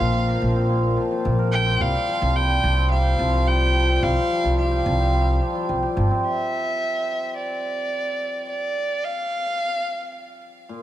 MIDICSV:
0, 0, Header, 1, 4, 480
1, 0, Start_track
1, 0, Tempo, 555556
1, 1558, Time_signature, 4, 2, 24, 8
1, 9352, End_track
2, 0, Start_track
2, 0, Title_t, "Violin"
2, 0, Program_c, 0, 40
2, 0, Note_on_c, 0, 77, 104
2, 843, Note_off_c, 0, 77, 0
2, 1317, Note_on_c, 0, 79, 110
2, 1563, Note_on_c, 0, 77, 111
2, 1576, Note_off_c, 0, 79, 0
2, 2041, Note_on_c, 0, 79, 111
2, 2054, Note_off_c, 0, 77, 0
2, 2514, Note_off_c, 0, 79, 0
2, 2519, Note_on_c, 0, 77, 103
2, 3000, Note_on_c, 0, 79, 107
2, 3013, Note_off_c, 0, 77, 0
2, 3479, Note_on_c, 0, 77, 104
2, 3492, Note_off_c, 0, 79, 0
2, 3953, Note_off_c, 0, 77, 0
2, 3958, Note_on_c, 0, 77, 92
2, 4883, Note_off_c, 0, 77, 0
2, 5405, Note_on_c, 0, 76, 85
2, 6327, Note_off_c, 0, 76, 0
2, 6366, Note_on_c, 0, 74, 87
2, 7287, Note_off_c, 0, 74, 0
2, 7337, Note_on_c, 0, 74, 88
2, 7809, Note_on_c, 0, 77, 97
2, 7822, Note_off_c, 0, 74, 0
2, 9003, Note_off_c, 0, 77, 0
2, 9352, End_track
3, 0, Start_track
3, 0, Title_t, "Hammered dulcimer"
3, 0, Program_c, 1, 15
3, 0, Note_on_c, 1, 46, 77
3, 0, Note_on_c, 1, 53, 69
3, 0, Note_on_c, 1, 58, 76
3, 0, Note_on_c, 1, 60, 71
3, 0, Note_on_c, 1, 70, 65
3, 116, Note_off_c, 1, 58, 0
3, 119, Note_on_c, 1, 58, 76
3, 233, Note_off_c, 1, 70, 0
3, 236, Note_on_c, 1, 70, 71
3, 348, Note_off_c, 1, 53, 0
3, 358, Note_on_c, 1, 53, 69
3, 477, Note_off_c, 1, 60, 0
3, 480, Note_on_c, 1, 60, 70
3, 588, Note_off_c, 1, 46, 0
3, 598, Note_on_c, 1, 46, 79
3, 823, Note_off_c, 1, 53, 0
3, 833, Note_on_c, 1, 53, 77
3, 948, Note_off_c, 1, 53, 0
3, 958, Note_on_c, 1, 53, 72
3, 1076, Note_off_c, 1, 58, 0
3, 1079, Note_on_c, 1, 58, 77
3, 1197, Note_off_c, 1, 70, 0
3, 1201, Note_on_c, 1, 70, 71
3, 1310, Note_off_c, 1, 53, 0
3, 1320, Note_on_c, 1, 53, 67
3, 1432, Note_off_c, 1, 60, 0
3, 1436, Note_on_c, 1, 60, 77
3, 1560, Note_on_c, 1, 55, 77
3, 1601, Note_off_c, 1, 46, 0
3, 1601, Note_off_c, 1, 53, 0
3, 1796, Note_on_c, 1, 53, 71
3, 1901, Note_off_c, 1, 53, 0
3, 1912, Note_on_c, 1, 53, 69
3, 2029, Note_off_c, 1, 55, 0
3, 2039, Note_on_c, 1, 55, 76
3, 2155, Note_on_c, 1, 67, 72
3, 2263, Note_off_c, 1, 53, 0
3, 2274, Note_on_c, 1, 53, 74
3, 2396, Note_off_c, 1, 60, 0
3, 2399, Note_on_c, 1, 60, 69
3, 2509, Note_off_c, 1, 55, 0
3, 2520, Note_on_c, 1, 55, 77
3, 2751, Note_off_c, 1, 53, 0
3, 2762, Note_on_c, 1, 53, 73
3, 2871, Note_off_c, 1, 53, 0
3, 2882, Note_on_c, 1, 53, 71
3, 2986, Note_off_c, 1, 55, 0
3, 2997, Note_on_c, 1, 55, 82
3, 3115, Note_off_c, 1, 67, 0
3, 3119, Note_on_c, 1, 67, 70
3, 3230, Note_off_c, 1, 53, 0
3, 3241, Note_on_c, 1, 53, 68
3, 3354, Note_off_c, 1, 60, 0
3, 3357, Note_on_c, 1, 60, 70
3, 3472, Note_off_c, 1, 55, 0
3, 3482, Note_on_c, 1, 55, 76
3, 3644, Note_off_c, 1, 70, 0
3, 3709, Note_off_c, 1, 53, 0
3, 3719, Note_on_c, 1, 53, 71
3, 3822, Note_off_c, 1, 53, 0
3, 3832, Note_on_c, 1, 53, 72
3, 3944, Note_off_c, 1, 55, 0
3, 3954, Note_on_c, 1, 55, 78
3, 4069, Note_off_c, 1, 67, 0
3, 4072, Note_on_c, 1, 67, 70
3, 4182, Note_off_c, 1, 53, 0
3, 4192, Note_on_c, 1, 53, 73
3, 4312, Note_off_c, 1, 60, 0
3, 4316, Note_on_c, 1, 60, 72
3, 4425, Note_off_c, 1, 55, 0
3, 4436, Note_on_c, 1, 55, 78
3, 4668, Note_off_c, 1, 53, 0
3, 4679, Note_on_c, 1, 53, 72
3, 4783, Note_off_c, 1, 58, 0
3, 4784, Note_off_c, 1, 53, 0
3, 4795, Note_on_c, 1, 53, 69
3, 4904, Note_off_c, 1, 55, 0
3, 4914, Note_on_c, 1, 55, 81
3, 5030, Note_off_c, 1, 67, 0
3, 5033, Note_on_c, 1, 67, 72
3, 5143, Note_off_c, 1, 53, 0
3, 5153, Note_on_c, 1, 53, 70
3, 5273, Note_off_c, 1, 60, 0
3, 5276, Note_on_c, 1, 60, 76
3, 5441, Note_off_c, 1, 53, 0
3, 5441, Note_off_c, 1, 55, 0
3, 7745, Note_off_c, 1, 67, 0
3, 8732, Note_off_c, 1, 60, 0
3, 9237, Note_on_c, 1, 46, 66
3, 9352, Note_off_c, 1, 46, 0
3, 9352, End_track
4, 0, Start_track
4, 0, Title_t, "Upright bass"
4, 0, Program_c, 2, 32
4, 0, Note_on_c, 2, 34, 87
4, 328, Note_off_c, 2, 34, 0
4, 359, Note_on_c, 2, 34, 93
4, 809, Note_off_c, 2, 34, 0
4, 1081, Note_on_c, 2, 34, 97
4, 1530, Note_off_c, 2, 34, 0
4, 1556, Note_on_c, 2, 36, 87
4, 1659, Note_off_c, 2, 36, 0
4, 1914, Note_on_c, 2, 36, 91
4, 2247, Note_off_c, 2, 36, 0
4, 2277, Note_on_c, 2, 36, 96
4, 2729, Note_off_c, 2, 36, 0
4, 2755, Note_on_c, 2, 36, 100
4, 3448, Note_off_c, 2, 36, 0
4, 3477, Note_on_c, 2, 36, 102
4, 3579, Note_off_c, 2, 36, 0
4, 3836, Note_on_c, 2, 36, 85
4, 4168, Note_off_c, 2, 36, 0
4, 4197, Note_on_c, 2, 36, 101
4, 4649, Note_off_c, 2, 36, 0
4, 4917, Note_on_c, 2, 36, 80
4, 5019, Note_off_c, 2, 36, 0
4, 5156, Note_on_c, 2, 31, 90
4, 5259, Note_off_c, 2, 31, 0
4, 9352, End_track
0, 0, End_of_file